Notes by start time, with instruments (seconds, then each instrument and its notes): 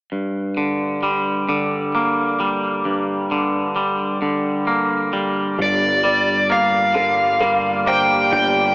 0.12 clean electric guitar G2
0.57 clean electric guitar D3
1.03 clean electric guitar G3
1.49 clean electric guitar D3
1.95 clean electric guitar A#3
2.40 clean electric guitar G3
2.85 clean electric guitar G2
3.31 clean electric guitar D3
3.76 clean electric guitar G3
4.22 clean electric guitar D3
4.67 clean electric guitar A#3
5.13 clean electric guitar G3
5.58 picked electric bass G1, clean electric guitar G2, ambient pad D3 A#3 G4 D5, lead electric guitar D5
6.04 clean electric guitar G3, felt piano D5
6.50 clean electric guitar A#3, lead electric guitar F5
6.94 clean electric guitar D3, felt piano A#4
7.40 clean electric guitar G3, felt piano A#4
7.86 clean electric guitar A#3, felt piano C5, lead electric guitar G5
8.32 picked electric bass G1, clean electric guitar G2, felt piano D5, lead electric guitar G5